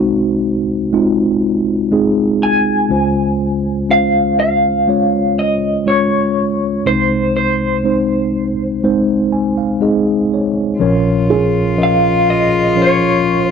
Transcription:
0.00 2.87 C2 soft
0.00 2.87 C3 soft
0.00 0.93 G#3 medium
0.00 0.94 C4 medium
0.00 0.94 D#4 medium
0.00 0.63 F#4 medium
0.00 2.91 C5 medium
0.93 1.61 G#3 medium
0.93 1.61 C4 medium
0.93 1.62 D#4 medium
0.93 1.62 F4 medium
1.92 2.60 G#3 medium
1.92 2.60 C4 medium
1.92 2.60 D#4 medium
1.92 2.60 G#4 medium
2.43 3.91 G#5 medium
2.89 6.81 C#2 soft
2.89 6.81 C#3 soft
2.89 3.58 G#3 medium
2.89 3.58 C#4 soft
2.89 3.59 F4 soft
2.89 3.59 C5 medium
3.89 4.57 G#3 soft
3.89 4.57 C#4 medium
3.89 4.58 F4 soft
3.89 4.58 C5 medium
3.89 4.38 F5 medium
4.40 5.39 F5 medium
4.88 5.56 G#3 medium
4.88 5.56 C#4 medium
4.88 5.56 F4 medium
4.88 5.57 C#5 medium
5.39 5.84 D#5 medium
5.86 6.54 G#3 medium
5.86 6.55 C#4 soft
5.86 6.55 F4 soft
5.86 6.55 C#5 medium
5.86 6.87 C#5 medium
6.86 10.77 C2 soft
6.86 10.76 C3 medium
6.86 7.53 G#3 soft
6.86 7.54 C4 soft
6.86 7.54 D#4 soft
6.86 7.54 C5 medium
6.86 7.35 C5 medium
7.37 8.80 C5 medium
7.84 8.52 G#3 medium
7.84 8.52 C4 medium
7.84 8.53 D#4 medium
7.84 8.53 C5 medium
8.83 9.51 G#3 medium
8.83 9.51 C4 medium
8.83 9.51 D#4 medium
8.83 9.52 C5 medium
9.32 9.55 G#5 soft
9.58 9.80 F5 soft
9.80 10.49 G#3 medium
9.80 10.49 C4 medium
9.80 10.50 D#4 medium
9.80 10.50 G#4 medium
9.80 10.28 D#5 soft
10.33 10.78 C#5 soft
10.79 13.51 A#1 medium
10.79 13.51 A#2 medium
10.79 11.48 F3 medium
10.79 11.48 C#4 medium
10.79 13.51 F4 medium
10.79 11.49 A#4 medium
10.79 11.49 C#5 medium
11.30 13.51 G#4 soft
11.77 12.46 F3 soft
11.77 12.47 C#4 soft
11.77 12.47 A#4 soft
11.77 12.47 D#5 medium
11.83 12.30 F5 medium
12.30 12.80 D#5 medium
12.76 13.45 F3 medium
12.76 13.45 C#4 medium
12.76 13.45 A#4 medium
12.76 13.46 C#5 medium
12.82 13.44 C#5 medium
13.44 13.51 C5 medium

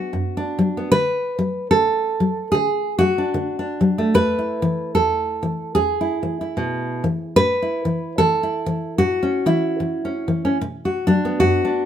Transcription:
0.00 0.50 F#3 medium
0.00 0.76 B3 soft
0.00 0.36 D4 soft
0.00 0.91 F#4 medium
0.13 0.86 F#2 soft
0.37 0.89 D4 soft
0.59 0.92 F#3 medium
0.77 0.89 B3 soft
0.92 1.66 D3 medium
0.92 1.70 B4 loud
1.39 2.10 F#3 medium
1.71 2.47 D3 medium
1.71 2.51 A4 medium
2.20 2.91 F#3 medium
2.52 3.28 D3 medium
2.52 2.98 G#4 medium
2.99 3.72 F#3 medium
2.99 4.14 F#4 medium
3.18 3.58 D4 soft
3.34 4.08 D3 medium
3.59 4.11 D4 soft
3.81 4.15 F#3 medium
3.98 7.37 A3 soft
4.14 4.88 E2 medium
4.14 4.94 B4 loud
4.39 6.00 E4 soft
4.62 5.33 E3 medium
4.95 5.69 E2 medium
4.95 5.74 A4 medium
5.43 5.76 E3 medium
5.75 6.50 E2 medium
5.75 7.36 G#4 medium
6.01 6.40 E4 soft
6.23 6.94 E3 medium
6.41 7.34 E4 soft
6.57 7.04 B2 soft
7.04 7.37 E3 medium
7.36 8.12 A2 medium
7.36 8.17 B4 loud
7.62 8.42 E4 soft
7.85 8.18 E3 medium
8.18 8.65 E3 medium
8.18 8.98 A4 medium
8.43 9.45 E4 soft
8.66 9.37 E3 medium
8.98 9.73 A2 medium
8.98 10.26 F#4 medium
9.23 10.03 C#4 soft
9.46 9.79 E3 medium
9.46 10.61 E4 medium
9.80 10.27 E3 medium
10.05 10.44 C#4 soft
10.28 10.61 E3 medium
10.45 10.57 C#4 soft
10.61 11.35 B2 medium
10.85 11.39 F#4 soft
11.07 11.79 F#3 medium
11.07 11.64 D4 medium
11.25 11.85 B3 soft
11.40 11.85 F#2 medium
11.40 11.85 F#4 medium
11.65 11.85 D4 soft

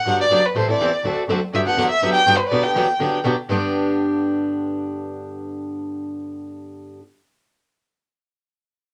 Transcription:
0.00 0.20 F#5 medium
0.05 0.13 G2 medium
0.05 0.24 D3 medium
0.05 0.24 F#3 medium
0.05 0.24 B3 medium
0.05 0.24 D4 medium
0.05 0.24 G4 medium
0.21 0.47 D5 medium
0.29 0.37 F#2 medium
0.29 0.40 D3 medium
0.29 0.41 F#3 medium
0.29 0.41 B3 medium
0.29 0.41 D4 medium
0.29 0.41 G4 medium
0.46 0.56 B4 medium
0.54 0.60 A2 medium
0.54 0.68 E3 medium
0.54 0.68 G3 medium
0.54 0.68 C4 medium
0.54 0.68 E4 medium
0.54 0.67 A4 medium
0.54 0.69 C5 medium
0.68 0.72 A2 soft
0.68 0.80 C4 medium
0.68 0.80 E4 medium
0.68 0.79 A4 medium
0.68 1.15 D5 medium
0.78 0.86 E2 medium
0.78 0.90 E3 medium
0.78 0.90 G3 medium
0.78 0.90 C4 medium
0.78 0.90 E4 medium
0.78 0.90 A4 medium
1.04 1.12 D2 medium
1.04 1.22 D3 medium
1.04 1.22 A3 medium
1.04 1.22 C4 medium
1.04 1.22 F#4 medium
1.04 1.23 A4 medium
1.28 1.36 F#2 medium
1.28 1.39 D3 medium
1.28 1.39 A3 medium
1.28 1.39 C4 medium
1.28 1.39 F#4 medium
1.28 1.39 A4 medium
1.53 1.61 G2 medium
1.53 1.66 D3 medium
1.53 1.66 F#3 medium
1.53 1.66 B3 medium
1.53 1.66 D4 medium
1.53 1.65 G4 medium
1.53 1.60 E5 medium
1.66 1.77 B3 soft
1.66 1.77 D4 soft
1.66 1.77 G4 medium
1.66 1.89 F#5 loud
1.77 1.85 E2 medium
1.77 1.88 D3 medium
1.77 1.88 F#3 medium
1.77 1.88 B3 medium
1.77 1.88 D4 medium
1.77 1.88 G4 medium
1.90 2.13 E5 loud
2.02 2.10 F#2 medium
2.02 2.20 D3 medium
2.02 2.20 F#3 medium
2.02 2.20 B3 medium
2.02 2.20 D4 medium
2.02 2.20 G4 medium
2.14 2.38 G5 loud
2.26 2.34 G2 medium
2.26 2.37 D3 medium
2.26 2.37 F#3 medium
2.26 2.37 B3 medium
2.26 2.37 D4 medium
2.26 2.37 G4 loud
2.37 2.51 B4 medium
2.37 2.38 C5 medium
2.49 2.59 B2 medium
2.49 2.64 D3 medium
2.49 2.64 F#3 medium
2.49 2.64 B3 medium
2.49 2.64 D4 medium
2.49 2.64 G4 medium
2.49 2.65 D5 medium
2.63 2.76 D4 soft
2.63 2.75 G4 medium
2.63 3.13 G5 medium
2.67 2.76 B3 soft
2.74 2.86 D3 medium
2.74 2.82 E3 medium
2.74 2.86 F#3 medium
2.74 2.86 B3 medium
2.74 2.86 D4 loud
2.74 2.86 G4 medium
2.99 3.07 D3 medium
2.99 3.18 D3 medium
2.99 3.18 F#3 medium
2.99 3.18 B3 medium
2.99 3.18 D4 medium
2.99 3.18 G4 medium
3.24 3.32 B2 medium
3.24 3.34 D3 medium
3.24 3.34 F#3 medium
3.24 3.34 B3 medium
3.24 3.34 D4 medium
3.24 3.35 G4 medium
3.49 3.57 G2 medium
3.49 6.99 G2 medium
3.49 7.00 D3 medium
3.49 7.00 B3 medium
3.49 7.01 D4 medium
3.49 7.02 G4 medium

